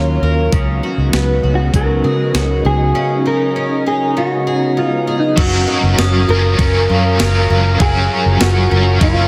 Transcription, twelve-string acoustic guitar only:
0.00 0.53 D#3 medium
0.00 1.74 F#3 medium
0.00 1.13 C#4 medium
0.00 0.59 F4 soft
0.00 0.22 A#4 medium
0.23 0.59 A#4 medium
0.53 2.94 C#3 medium
0.83 1.43 F#4 medium
1.14 3.01 B3 medium
1.43 2.34 F#4 soft
1.74 4.50 F#3 medium
2.04 2.64 G#4 medium
2.34 3.25 F#4 medium
2.65 4.47 G#4 medium
2.95 4.15 C#3 medium
3.26 3.85 D#4 medium
3.56 4.80 C#4 medium
3.86 4.23 D#4 medium
4.17 5.44 C#3 medium
4.47 5.06 G#4 medium
4.77 5.44 D#4 medium
5.07 5.44 G#4 medium
5.38 7.79 F#3 medium
5.68 5.82 D#4 medium
5.99 6.59 C#4 medium
6.29 7.19 A#4 medium
6.59 8.41 C#4 medium
6.89 7.50 F4 medium
7.20 8.70 A#4 medium
7.50 9.28 F4 medium
7.81 9.28 F#3 medium
8.41 9.01 C#4 medium
8.71 9.28 A#4 medium
9.02 9.28 C#4 medium

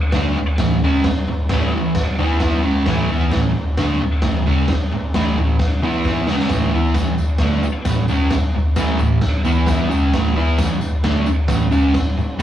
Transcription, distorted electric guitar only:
0.14 0.36 D3 medium
0.14 0.36 A3 medium
0.14 0.36 D4 loud
0.38 muted distorted electric guitar stroke medium
0.60 0.78 A2 medium
0.60 0.78 E3 medium
0.84 1.05 C#3 medium
0.84 1.05 G#3 loud
0.84 1.05 C#4 loud
1.06 muted distorted electric guitar stroke medium
1.28 muted distorted electric guitar stroke soft
1.51 1.73 A2 loud
1.51 1.73 E3 medium
1.51 1.73 A3 medium
1.74 1.92 A2 medium
1.74 1.92 E3 medium
2.19 2.63 E3 medium
2.19 2.63 B3 medium
2.19 2.63 E4 loud
2.64 2.86 C#3 loud
2.64 2.86 G#3 loud
2.64 2.86 C#4 loud
2.87 3.09 A2 medium
2.87 3.09 E3 loud
2.87 3.09 A3 medium
3.10 3.32 E3 medium
3.10 3.32 B3 medium
3.10 3.32 E4 medium
3.34 3.51 A2 medium
3.34 3.51 E3 medium
3.78 4.00 D3 loud
3.78 4.00 A3 medium
3.78 4.00 D4 loud
4.02 muted distorted electric guitar stroke medium
4.25 4.42 A2 medium
4.25 4.42 E3 medium
4.47 4.68 C#3 medium
4.47 4.68 G#3 loud
4.47 4.69 C#4 loud
4.71 muted distorted electric guitar stroke medium
4.93 muted distorted electric guitar stroke medium
5.15 5.36 A2 medium
5.15 5.37 E3 loud
5.15 5.37 A3 loud
5.38 5.55 A2 medium
5.38 5.55 E3 medium
5.82 6.27 E3 medium
5.82 6.27 B3 medium
5.82 6.28 E4 loud
6.28 6.49 C#3 medium
6.28 6.50 G#3 loud
6.28 6.50 C#4 loud
6.51 6.72 A2 loud
6.51 6.72 E3 medium
6.51 6.73 A3 loud
6.73 6.95 E3 medium
6.73 6.95 B3 medium
6.73 6.96 E4 medium
6.95 7.14 A2 medium
6.95 7.14 E3 medium
7.41 7.62 D3 medium
7.41 7.63 A3 medium
7.41 7.63 D4 loud
7.63 muted distorted electric guitar stroke medium
7.85 8.04 A2 medium
7.85 8.04 E3 medium
8.09 8.31 C#3 medium
8.09 8.31 G#3 medium
8.09 8.32 C#4 medium
8.32 muted distorted electric guitar stroke medium
8.55 muted distorted electric guitar stroke medium
8.77 8.98 A2 medium
8.77 8.99 E3 loud
8.77 9.00 A3 loud
9.00 9.18 A2 medium
9.00 9.18 E3 medium
9.45 9.90 E3 medium
9.45 9.90 B3 loud
9.45 9.90 E4 medium
9.90 10.12 C#3 loud
9.90 10.13 G#3 loud
9.90 10.13 C#4 loud
10.14 10.35 A2 medium
10.14 10.34 E3 loud
10.14 10.36 A3 loud
10.35 10.57 E3 medium
10.35 10.58 B3 medium
10.35 10.58 E4 medium
10.59 10.77 A2 medium
10.59 10.77 E3 medium
11.04 11.26 D3 medium
11.04 11.26 A3 medium
11.04 11.26 D4 medium
11.28 muted distorted electric guitar stroke medium
11.48 11.67 A2 medium
11.48 11.67 E3 medium
11.71 11.94 C#3 medium
11.71 11.94 G#3 medium
11.71 11.95 C#4 loud
11.95 muted distorted electric guitar stroke medium
12.18 muted distorted electric guitar stroke soft
12.39 12.42 A2 medium

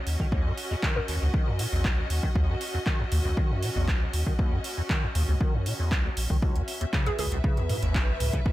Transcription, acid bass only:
0.20 0.27 D#3 medium
0.32 0.47 D#2 medium
0.45 0.52 F#2 medium
0.71 0.75 E2 medium
0.83 0.98 D#3 medium
0.96 1.00 D#2 loud
1.09 1.16 D#2 medium
1.22 1.28 D#2 medium
1.34 1.48 D#3 medium
1.47 1.61 F#2 medium
1.59 1.67 A#2 medium
1.72 1.86 E2 medium
1.85 1.99 C#2 medium
1.98 2.02 D#2 loud
2.23 2.30 D#3 medium
2.36 2.50 D#2 medium
2.49 2.56 F#2 medium
2.74 2.78 E2 medium
2.86 3.01 D#3 medium
3.00 3.04 D#2 loud
3.12 3.19 D#2 medium
3.25 3.32 D#2 medium
3.37 3.52 D#3 medium
3.50 3.64 F#2 medium
3.63 3.70 A#2 medium
3.76 3.90 E2 medium
3.88 4.03 C#2 medium
4.01 4.05 D#2 loud
4.26 4.33 D#3 medium
4.39 4.54 D#2 medium
4.52 4.59 F#2 medium
4.77 4.82 E2 medium
4.90 5.04 D#3 medium
5.03 5.07 D#2 loud
5.15 5.22 D#2 medium
5.28 5.35 D#2 medium
5.41 5.55 D#3 medium
5.54 5.68 F#2 medium
5.66 5.73 A#2 medium
5.79 5.93 E2 medium
5.91 6.06 C#2 medium
6.05 6.09 D#2 loud
6.30 6.37 D#3 medium
6.42 6.57 C#2 medium
6.55 6.62 E2 medium
6.81 6.85 D#2 medium
6.93 7.08 C#3 medium
7.06 7.10 C#2 loud
7.19 7.26 C#2 medium
7.32 7.39 C#2 medium
7.44 7.59 C#3 medium
7.57 7.71 E2 medium
7.70 7.77 G#2 medium
7.82 7.96 D#2 medium
7.95 8.09 B1 medium
8.08 8.12 C#2 loud
8.33 8.40 C#3 medium
8.46 8.53 C#2 medium

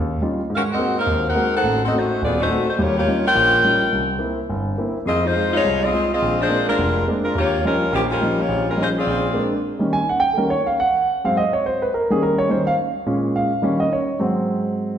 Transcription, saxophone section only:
0.54 0.61 C#4 medium
0.54 0.61 F#4 medium
0.54 0.61 A#4 medium
0.54 0.61 F5 medium
0.70 0.95 C4 medium
0.70 0.95 F#4 medium
0.70 0.95 A#4 medium
0.70 0.95 D#5 medium
0.98 1.23 D#4 medium
0.98 1.23 A#4 medium
0.98 1.23 C5 medium
0.98 1.23 F5 medium
1.27 1.54 D#4 medium
1.27 1.54 A#4 medium
1.27 1.54 C5 medium
1.27 1.54 F#5 medium
1.55 1.80 D#4 medium
1.55 1.81 A4 medium
1.55 1.81 C5 medium
1.55 1.80 F#5 medium
1.84 1.93 C4 medium
1.84 1.93 F#4 medium
1.84 1.93 A4 medium
1.84 1.93 D#5 medium
1.96 2.23 A3 medium
1.96 2.23 D#4 medium
1.96 2.23 F#4 medium
1.96 2.23 C5 medium
2.23 2.38 B3 medium
2.23 2.38 F4 medium
2.23 2.38 G#4 medium
2.23 2.38 D5 medium
2.40 2.66 A3 medium
2.40 2.65 D#4 medium
2.40 2.65 F#4 medium
2.40 2.66 C5 medium
2.68 2.78 A3 medium
2.68 2.78 D#4 medium
2.68 2.78 F#4 medium
2.68 2.78 C5 medium
2.80 2.96 A#3 medium
2.80 2.96 F4 medium
2.80 2.95 G4 medium
2.80 2.96 C#5 medium
2.96 3.23 A#3 medium
2.96 3.23 F4 medium
2.96 3.22 G4 medium
2.96 3.23 C#5 medium
3.26 3.89 F4 medium
3.26 4.06 A#4 medium
3.26 3.89 C#5 medium
3.26 4.06 G5 loud
5.05 5.22 C4 medium
5.05 5.22 F4 medium
5.05 5.22 G#4 medium
5.05 5.22 D#5 medium
5.23 5.52 G#3 medium
5.23 5.52 D#4 medium
5.23 5.52 F4 medium
5.23 5.52 C5 medium
5.53 5.79 G#3 medium
5.53 5.79 D#4 medium
5.53 5.79 F4 medium
5.53 5.79 C#5 medium
5.82 6.10 C4 medium
5.82 6.10 F4 medium
5.82 6.10 G#4 medium
5.82 6.10 D#5 medium
6.12 6.37 C4 medium
6.12 6.37 F4 medium
6.12 6.37 G#4 medium
6.12 6.37 D#5 medium
6.39 6.65 G#3 medium
6.39 6.65 D4 medium
6.39 6.65 F4 medium
6.39 6.65 C5 medium
6.68 7.04 G#3 medium
6.68 7.04 D4 medium
6.68 7.05 F4 medium
6.68 7.04 A#4 medium
7.25 7.35 G#3 medium
7.25 7.35 D4 medium
7.25 7.35 F4 medium
7.25 7.35 A#4 medium
7.36 7.62 A#3 medium
7.36 7.62 F4 medium
7.36 7.62 G4 medium
7.36 7.62 C#5 medium
7.65 7.90 G3 medium
7.65 7.91 C#4 medium
7.65 7.91 F4 medium
7.65 7.91 A#4 medium
7.93 8.01 F3 medium
7.93 8.01 A#3 medium
7.93 8.01 C#4 medium
7.93 8.01 G4 medium
8.10 8.36 G3 medium
8.10 8.36 C#4 medium
8.10 8.36 F4 medium
8.10 8.36 A#4 medium
8.38 8.67 A#3 medium
8.38 8.67 F4 medium
8.38 8.66 G4 medium
8.38 8.67 C#5 medium
8.68 8.78 G3 medium
8.68 8.78 C#4 medium
8.68 8.78 F4 medium
8.68 8.78 A#4 medium
8.81 8.88 G#3 medium
8.81 8.88 C#4 medium
8.81 8.88 F4 medium
8.81 8.88 C5 medium
8.97 9.50 C4 medium
8.97 9.49 F4 medium
8.97 9.49 G#4 medium
8.97 9.49 D5 medium

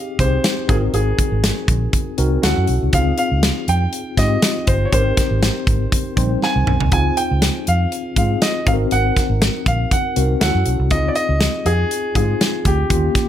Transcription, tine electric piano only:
0.00 0.19 C4 medium
0.00 0.19 D#4 medium
0.00 0.20 G4 medium
0.00 0.20 G#4 medium
0.19 0.67 C4 medium
0.19 0.67 D#4 soft
0.19 0.69 G4 soft
0.19 0.70 G#4 medium
0.68 1.57 C4 medium
0.68 1.57 D#4 medium
0.68 1.58 F#4 medium
0.68 1.58 A#4 medium
2.18 2.43 C4 medium
2.18 2.43 D#4 medium
2.18 2.42 F#4 medium
2.18 2.44 A#4 medium
2.42 2.87 C#4 medium
2.42 2.87 E4 medium
2.42 2.88 F#4 medium
2.42 2.88 A4 medium
2.93 3.82 C4 medium
2.93 3.82 D#4 medium
2.93 3.82 F4 medium
2.93 3.82 G#4 medium
4.17 4.84 C4 medium
4.17 4.84 D#4 medium
4.17 4.84 F4 medium
4.17 4.85 G4 medium
4.92 5.81 C4 medium
4.92 5.81 D#4 medium
4.92 5.81 G4 medium
4.92 5.82 A#4 medium
6.16 6.84 G3 medium
6.16 6.83 C4 medium
6.16 6.84 D#4 medium
6.16 6.84 C5 medium
6.91 7.80 C4 medium
6.91 7.81 D#4 medium
6.91 7.81 F4 medium
6.91 7.81 G#4 medium
8.16 8.65 C4 soft
8.16 8.65 D#4 soft
8.16 8.67 F4 medium
8.16 8.67 G#4 medium
8.66 9.55 C4 medium
8.66 9.55 D#4 medium
8.66 9.55 F#4 medium
8.66 8.73 A4 medium
8.73 9.58 A#4 medium
10.16 10.41 C4 medium
10.16 10.41 D#4 medium
10.16 10.40 F#4 soft
10.16 10.41 A#4 medium
10.40 10.85 C#4 medium
10.40 10.85 E4 medium
10.40 10.85 F#4 medium
10.40 10.86 A4 medium
10.91 11.79 C4 medium
10.91 11.80 D#4 medium
10.91 11.80 F4 medium
10.91 11.80 G#4 medium
12.15 12.82 C4 medium
12.15 12.82 D#4 medium
12.15 12.82 F4 medium
12.15 12.82 G#4 medium
12.90 13.29 A#3 medium
12.90 13.29 C#4 medium
12.90 13.29 F4 medium
12.90 13.29 G4 medium

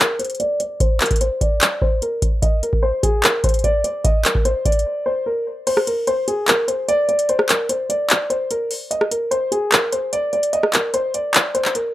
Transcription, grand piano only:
0.00 0.17 A#4 medium
0.19 0.37 C5 medium
0.40 0.58 D5 loud
0.60 0.78 D5 medium
0.81 0.99 C5 medium
1.01 1.19 A#4 medium
1.21 1.39 C5 medium
1.41 1.79 D5 medium
1.82 2.00 C5 medium
2.02 2.20 A#4 medium
2.42 2.60 D#5 medium
2.63 2.81 A#4 medium
2.83 3.01 C5 medium
3.03 3.21 G#4 medium
3.24 3.42 A#4 medium
3.44 3.62 C5 medium
3.64 3.82 D5 medium
3.84 4.02 D5 medium
4.04 4.23 D#5 medium
4.25 4.43 A#4 medium
4.45 4.63 C5 medium
4.66 5.04 D5 medium
5.06 5.24 C5 medium
5.26 5.44 A#4 medium
5.67 5.85 C5 medium
5.87 6.05 A#4 medium
6.07 6.25 C5 medium
6.28 6.46 G#4 medium
6.48 6.66 A#4 loud
6.68 6.86 C5 medium
6.88 7.07 D5 loud
7.09 7.27 D5 medium
7.29 7.47 C5 medium
7.49 7.67 A#4 medium
7.69 7.87 C5 medium
7.90 8.28 D5 medium
8.30 8.48 C5 medium
8.51 8.69 A#4 medium
8.91 9.09 D#5 medium
9.11 9.29 A#4 medium
9.31 9.49 C5 medium
9.52 9.70 G#4 medium
9.72 9.90 A#4 medium
9.92 10.11 C5 medium
10.13 10.31 D5 medium
10.33 10.51 D5 medium
10.53 10.71 D#5 medium
10.73 10.92 A#4 medium
10.94 11.12 C5 medium
11.14 11.52 D5 medium
11.55 11.73 C5 medium
11.75 11.93 A#4 medium

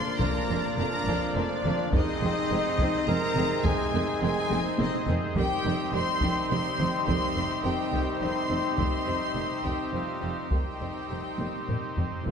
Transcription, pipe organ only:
0.00 1.89 A#3 medium
0.00 1.88 D4 medium
0.00 1.89 F4 medium
0.00 1.89 D5 medium
1.92 5.33 C4 medium
1.92 5.34 D#4 medium
1.92 5.36 G#4 medium
1.92 5.34 C5 medium
5.35 10.47 C4 medium
5.35 10.48 D#4 medium
5.35 10.50 G4 medium
5.35 10.48 C5 medium
10.51 12.24 C4 soft
10.51 12.24 D#4 soft
10.51 12.24 G4 soft
10.51 12.24 C5 soft

